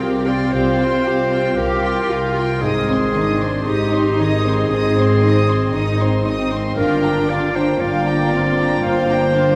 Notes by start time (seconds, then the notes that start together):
Already playing: C2 C3 G3 C4 F4
0.00 G3 G4 A#4 F5 G5
0.26 F4 D5 G5 C6
0.52 C2 C3 G4 C5 F5 G5
0.78 F4 G5 C6
1.04 C4 G4 F5 G5
1.31 F4 G5 C6
1.57 C2 G3 G4 A#4 F5 G5
1.83 F4 G5 C6
2.10 C4 F4 G4 F5 G5
2.36 F4 G5 C6
2.61 G#1 G#2 D#3 C4 D#4 G#4 D#5 D#6
2.88 C4 C5 C6
3.14 D#3 D4 D#4 D#5 D#6
3.41 C4 C5 C6
3.67 G#1 C4 D#4 G4 D#5 D#6
3.93 C4 C5 C6
4.18 D#3 D#4 G#4 D#5 D#6
4.46 C4 C5 C6
4.70 G#1 G#2 C4 D#4 D#5 D#6
4.97 C4 C5 C6
5.23 C4 D#4 D#5 D#6
5.47 C4 C5 C6
5.74 G#1 D#3 D#4 D#5 D#6
5.99 C4 C5 C6
6.25 C4 D#4 D#5 D#6
6.51 C4 C5 C6
6.76 G1 G2 A#3 D4 F4 A#4 F5 G5
7.02 D4 G5 A#5
7.29 D3 F4 D5 F5 G5
7.55 D4 C5 G5 A#5
7.80 G1 G3 A#3 F4 D5 F5 G5
8.06 D4 G5 A#5
8.31 D3 C4 F4 F5 G5
8.57 D4 G5 A#5
8.83 G1 G2 A#3 F4 C5 F5 G5
9.09 D4 G5 A#5
9.34 G3 D4 F4 F5 G5